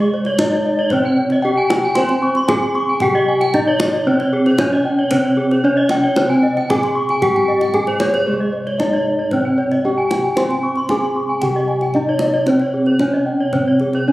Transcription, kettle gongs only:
0.00 3.00 C2 medium
0.00 0.35 C3 soft
0.00 1.40 G#4 soft
0.40 0.48 C#4 soft
1.44 1.52 C#4 soft
1.97 3.50 C5 soft
2.49 2.57 C#4 soft
3.01 4.55 C3 soft
3.54 3.62 C#4 soft
4.07 5.60 C4 medium
4.58 4.66 C#4 soft
5.12 6.65 C3 medium
5.65 5.73 C#4 soft
6.17 7.70 C4 medium
6.70 6.78 C#4 soft
7.21 8.75 G#2 medium
7.74 7.82 C#4 soft
8.26 9.80 G#4 soft
8.32 11.40 C2 medium
8.79 8.87 C#4 soft
9.84 9.92 C#4 soft
10.37 11.90 C5 medium
10.90 10.98 C#4 soft
11.42 12.96 C3 medium
11.95 12.03 C#4 soft
12.47 14.04 C4 medium
12.99 13.07 C#4 soft
13.53 14.12 C3 medium
14.07 14.12 C#4 soft

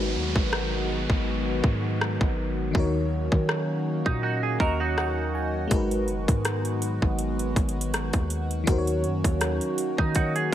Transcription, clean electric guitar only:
4.06 4.22 D#4 medium
4.23 4.42 D#4 medium
4.23 4.42 F#4 medium
4.43 4.59 G#4 medium
4.60 4.79 F#4 medium
4.60 4.79 A#4 medium
4.80 5.68 D#4 medium
4.80 5.67 F#4 medium
9.99 10.15 D#4 medium
10.16 10.35 D#4 medium
10.16 10.35 F#4 medium
10.36 10.52 G#4 medium

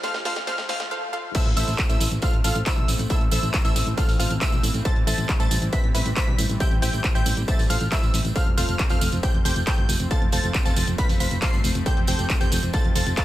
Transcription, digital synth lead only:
0.03 0.18 F6 loud
0.25 0.40 F6 loud
0.47 0.62 F6 loud
0.69 0.83 F6 loud
1.35 1.49 E6 loud
1.57 1.78 E6 loud
1.90 2.11 E6 medium
2.22 2.37 F6 medium
2.44 2.59 F6 medium
2.66 2.95 E6 loud
3.10 3.24 E6 loud
3.32 3.53 E6 medium
3.65 3.86 E6 loud
3.97 4.12 F6 medium
4.19 4.34 F6 medium
4.42 4.70 E6 loud
4.85 4.99 A6 loud
5.07 5.28 A6 loud
5.40 5.61 A6 medium
5.73 5.87 B6 medium
5.95 6.09 B6 medium
6.17 6.45 B6 loud
6.60 6.75 G6 loud
6.82 7.04 G6 loud
7.15 7.36 G6 medium
7.48 7.62 A6 medium
7.70 7.84 F6 medium
7.92 8.20 E6 loud
8.36 8.50 F6 loud
8.58 8.79 F6 medium
8.90 9.12 F6 medium
9.23 9.38 G6 medium
9.45 9.59 G6 medium
9.67 9.95 G6 medium
10.11 10.25 A6 loud
10.33 10.54 A6 medium
10.65 10.87 A6 medium
10.98 11.13 B6 medium
11.20 11.35 B6 medium
11.42 11.71 C7 loud
11.86 12.00 G6 loud
12.08 12.29 G6 medium
12.41 12.62 G6 loud
12.74 12.88 A6 medium
12.96 13.10 A6 medium
13.18 13.25 A6 loud

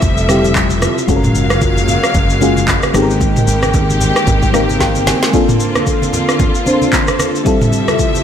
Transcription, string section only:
0.00 1.07 C3 medium
0.00 1.05 F3 medium
0.00 1.07 G3 medium
0.00 1.05 A4 medium
0.00 1.07 E5 medium
1.09 2.93 C#3 medium
1.09 2.93 F#3 medium
1.09 5.30 G#3 medium
1.09 2.93 A#3 medium
1.09 2.93 F5 medium
2.94 5.31 D#3 medium
2.94 7.42 A#3 medium
2.94 7.42 C4 medium
2.94 5.31 G4 medium
5.34 7.44 D3 medium
5.34 7.44 F4 medium
5.34 8.23 A4 medium
7.46 8.23 C3 medium
7.46 8.23 F3 medium
7.46 8.23 G3 medium
7.46 8.23 E5 medium

